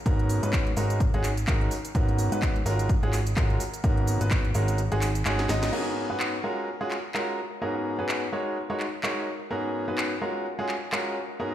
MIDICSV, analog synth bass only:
0, 0, Header, 1, 2, 480
1, 0, Start_track
1, 0, Tempo, 472441
1, 61, Time_signature, 4, 2, 24, 8
1, 11730, End_track
2, 0, Start_track
2, 0, Title_t, "Analog synth bass"
2, 0, Program_c, 0, 38
2, 59, Note_on_c, 0, 32, 95
2, 410, Note_off_c, 0, 32, 0
2, 436, Note_on_c, 0, 44, 91
2, 759, Note_off_c, 0, 44, 0
2, 779, Note_on_c, 0, 32, 98
2, 1130, Note_off_c, 0, 32, 0
2, 1156, Note_on_c, 0, 32, 94
2, 1479, Note_off_c, 0, 32, 0
2, 1500, Note_on_c, 0, 32, 93
2, 1719, Note_off_c, 0, 32, 0
2, 1980, Note_on_c, 0, 32, 100
2, 2330, Note_off_c, 0, 32, 0
2, 2357, Note_on_c, 0, 44, 94
2, 2679, Note_off_c, 0, 44, 0
2, 2700, Note_on_c, 0, 32, 95
2, 3050, Note_off_c, 0, 32, 0
2, 3077, Note_on_c, 0, 32, 100
2, 3400, Note_off_c, 0, 32, 0
2, 3420, Note_on_c, 0, 32, 94
2, 3639, Note_off_c, 0, 32, 0
2, 3900, Note_on_c, 0, 32, 95
2, 4250, Note_off_c, 0, 32, 0
2, 4278, Note_on_c, 0, 32, 96
2, 4600, Note_off_c, 0, 32, 0
2, 4621, Note_on_c, 0, 32, 99
2, 4971, Note_off_c, 0, 32, 0
2, 4998, Note_on_c, 0, 32, 97
2, 5320, Note_off_c, 0, 32, 0
2, 5340, Note_on_c, 0, 32, 94
2, 5560, Note_off_c, 0, 32, 0
2, 5581, Note_on_c, 0, 32, 96
2, 5800, Note_off_c, 0, 32, 0
2, 11730, End_track
0, 0, End_of_file